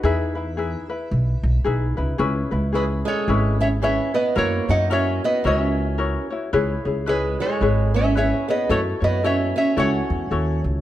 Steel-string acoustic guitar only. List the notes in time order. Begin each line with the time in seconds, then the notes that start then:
2.75 G#3
3.05 G#3
3.61 C#4
3.82 C#4
4.14 B3
4.36 A#3
4.69 D#4
4.91 C#4
5.24 B3
5.44 C4
5.55 C#4
7.07 G#3
7.40 G#3
7.94 C#4
8.17 C#4
8.49 B3
8.70 A3
9.04 B3
9.24 C#4
9.56 C#4
9.77 C#4